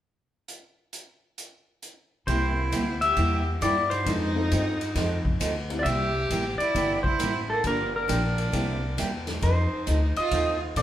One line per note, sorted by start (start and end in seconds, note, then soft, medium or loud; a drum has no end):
0.48 closed hi-hat medium
0.93 closed hi-hat medium
1.38 closed hi-hat medium
1.82 closed hi-hat medium
2.27 2.71 C2 medium
2.27 2.50 C3 medium
2.27 2.50 G3 medium
2.27 3.53 A#3 medium
2.27 2.50 A#3 medium
2.27 3.52 C4 soft
2.27 2.98 E4 medium
2.27 3.53 E4 soft
2.27 2.50 E4 medium
2.27 3.53 G4 soft
2.27 2.51 G4 medium
2.27 3.53 A#4 medium
2.27 3.01 C5 medium
2.27 kick soft
2.27 ride medium
2.72 3.15 D2 medium
2.72 2.84 C3 medium
2.72 2.84 G3 medium
2.72 2.85 A#3 medium
2.72 2.85 E4 medium
2.72 2.85 G4 medium
2.72 hi-hat pedal soft
2.72 ride medium
3.01 3.44 G4 medium
3.01 3.43 E5 loud
3.01 ride soft
3.17 3.61 E2 medium
3.17 3.39 C3 medium
3.17 3.40 G3 medium
3.17 3.40 A#3 medium
3.17 3.40 E4 medium
3.17 3.40 G4 medium
3.17 kick soft
3.17 ride medium
3.61 4.05 G2 medium
3.61 3.73 C3 medium
3.61 3.74 G3 medium
3.61 3.74 A#3 medium
3.61 3.89 E4 medium
3.61 3.74 E4 medium
3.61 3.74 G4 medium
3.61 3.92 D5 loud
3.61 hi-hat pedal medium
3.61 ride medium
3.90 5.21 D#4 loud
3.90 5.21 C5 medium
3.90 ride soft
4.05 4.50 F2 medium
4.05 4.29 F3 medium
4.05 4.33 G#3 medium
4.05 4.33 B3 medium
4.05 4.29 C4 medium
4.05 4.33 D4 medium
4.05 4.29 D#4 medium
4.05 4.33 E4 medium
4.05 4.33 G#4 medium
4.05 4.30 A4 medium
4.05 kick soft
4.05 ride medium
4.35 4.75 A3 medium
4.35 4.75 C4 medium
4.35 4.75 D#4 medium
4.35 4.75 F4 medium
4.35 4.75 A4 medium
4.51 4.95 G2 loud
4.51 4.64 F3 medium
4.51 4.64 C4 medium
4.51 4.64 D#4 medium
4.51 4.64 A4 medium
4.51 hi-hat pedal medium
4.51 ride medium
4.81 ride soft
4.95 5.39 F2 medium
4.95 5.18 F3 medium
4.95 5.19 C4 medium
4.95 5.19 D#4 medium
4.95 5.19 A4 medium
4.95 kick soft
4.95 snare soft
4.95 ride medium
5.25 kick soft
5.40 5.84 D2 medium
5.40 5.52 F3 medium
5.40 5.53 C4 medium
5.40 5.53 D#4 medium
5.40 5.53 A4 medium
5.40 hi-hat pedal medium
5.40 ride medium
5.70 5.84 A#3 medium
5.70 5.84 C4 medium
5.70 5.84 E4 medium
5.70 5.84 G4 medium
5.70 5.84 A#4 medium
5.70 ride soft
5.79 5.85 F4 medium
5.79 5.85 D5 medium
5.79 6.54 E5 loud
5.85 6.29 C2 medium
5.85 6.08 C3 medium
5.85 6.08 G3 medium
5.85 6.08 A#3 medium
5.85 6.08 E4 medium
5.85 6.56 G4 medium
5.85 6.08 G4 medium
5.85 kick soft
5.85 ride medium
6.30 6.58 A1 medium
6.30 6.42 C3 medium
6.30 6.42 G3 medium
6.30 6.43 A#3 medium
6.30 6.43 E4 medium
6.30 6.43 G4 medium
6.30 hi-hat pedal soft
6.30 ride medium
6.58 7.02 E4 medium
6.58 7.00 D5 loud
6.58 muted upright bass stroke soft
6.58 ride soft
6.75 7.18 G1 medium
6.75 6.97 C3 medium
6.75 6.98 G3 medium
6.75 6.98 A#3 medium
6.75 6.98 E4 medium
6.75 6.98 G4 medium
6.75 kick soft
6.75 ride medium
7.03 7.47 E4 medium
7.03 7.50 C5 medium
7.03 kick soft
7.19 7.63 A1 medium
7.19 7.31 C3 medium
7.19 7.31 G3 medium
7.19 7.31 A#3 medium
7.19 7.32 E4 medium
7.19 7.32 G4 medium
7.19 hi-hat pedal medium
7.19 ride medium
7.50 7.64 A#3 medium
7.50 7.65 A4 medium
7.64 8.07 G1 medium
7.64 7.87 D3 medium
7.64 7.87 F3 medium
7.64 7.90 A#3 medium
7.64 7.87 A#3 medium
7.64 7.90 D4 medium
7.64 7.92 D4 medium
7.64 7.87 D4 medium
7.64 7.90 F4 soft
7.64 7.91 G4 soft
7.64 7.87 G4 medium
7.64 7.91 A#4 medium
7.64 7.93 A#4 loud
7.64 kick soft
7.64 ride medium
7.96 9.24 D4 medium
7.96 9.25 A#4 medium
8.08 8.52 A#1 loud
8.08 8.20 D3 medium
8.08 8.21 F3 medium
8.08 8.21 A#3 medium
8.08 8.21 D4 medium
8.08 8.21 G4 medium
8.08 hi-hat pedal medium
8.08 ride medium
8.38 ride soft
8.52 8.97 C2 medium
8.52 8.75 C3 medium
8.52 8.75 G3 medium
8.52 8.75 A#3 medium
8.52 8.80 A#3 medium
8.52 8.80 C4 medium
8.52 8.76 E4 medium
8.52 8.80 E4 medium
8.52 8.76 G4 medium
8.52 8.80 G4 medium
8.52 8.80 A#4 medium
8.52 kick soft
8.52 ride medium
8.97 9.42 E2 medium
8.97 9.10 C3 medium
8.97 9.10 G3 medium
8.97 9.10 A#3 medium
8.97 9.10 E4 medium
8.97 9.10 G4 medium
8.97 hi-hat pedal medium
8.97 ride medium
9.27 snare soft
9.27 ride soft
9.41 9.70 F2 medium
9.41 9.64 F3 medium
9.41 9.64 C4 medium
9.41 9.65 D#4 medium
9.41 10.13 D#4 medium
9.41 9.65 A4 medium
9.41 10.19 C5 medium
9.41 kick soft
9.41 ride medium
9.72 muted upright bass stroke soft
9.87 10.15 D2 medium
9.87 9.99 F3 medium
9.87 9.99 C4 medium
9.87 9.99 D#4 medium
9.87 9.99 A4 medium
9.87 hi-hat pedal medium
9.87 ride medium
10.16 10.59 F4 medium
10.16 10.58 D#5 loud
10.16 ride soft
10.31 10.75 D#2 medium
10.31 10.54 F3 medium
10.31 10.54 C4 medium
10.31 10.55 D#4 medium
10.31 10.55 A4 medium
10.31 kick soft
10.31 ride medium
10.76 10.82 A#2 medium
10.76 10.82 F3 medium
10.76 10.82 C4 medium
10.76 10.82 D#4 medium
10.76 10.82 F4 medium
10.76 10.82 A4 medium
10.76 10.82 C5 medium
10.76 10.82 D5 loud
10.76 hi-hat pedal soft
10.76 ride medium